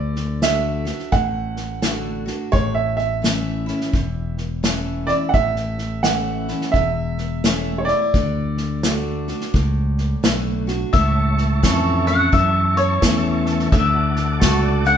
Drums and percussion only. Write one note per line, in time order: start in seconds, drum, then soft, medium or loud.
0.16 snare soft
0.42 snare medium
0.42 hi-hat pedal medium
0.86 snare soft
0.99 snare soft
1.12 kick loud
1.12 snare soft
1.56 snare soft
1.82 snare loud
1.82 hi-hat pedal medium
2.27 snare soft
2.53 kick loud
2.53 snare soft
2.98 snare soft
3.24 snare loud
3.24 hi-hat pedal medium
3.68 snare soft
3.81 snare soft
3.93 kick medium
3.93 snare soft
4.38 snare soft
4.64 snare loud
4.64 hi-hat pedal medium
5.08 snare soft
5.34 kick loud
5.34 snare soft
5.56 snare soft
5.78 snare soft
6.04 snare loud
6.04 hi-hat pedal medium
6.48 snare soft
6.61 snare soft
6.74 kick loud
6.74 snare soft
7.18 snare soft
7.44 snare loud
7.44 hi-hat pedal medium
7.88 snare soft
8.14 kick loud
8.14 snare soft
8.57 snare soft
8.83 snare loud
8.83 hi-hat pedal medium
9.28 snare soft
9.41 snare soft
9.54 kick loud
9.54 snare soft
9.98 snare soft
10.24 snare loud
10.24 hi-hat pedal medium
10.68 snare soft
10.93 kick loud
10.93 snare soft
11.38 snare soft
11.63 kick medium
11.63 snare loud
11.63 hi-hat pedal medium
12.07 snare soft
12.33 kick loud
12.33 snare soft
12.76 snare soft
13.02 kick medium
13.02 snare loud
13.02 hi-hat pedal medium
13.46 snare soft
13.59 snare soft
13.72 kick loud
13.72 snare soft
14.16 snare soft
14.41 kick medium
14.41 snare loud
14.41 hi-hat pedal medium
14.85 snare soft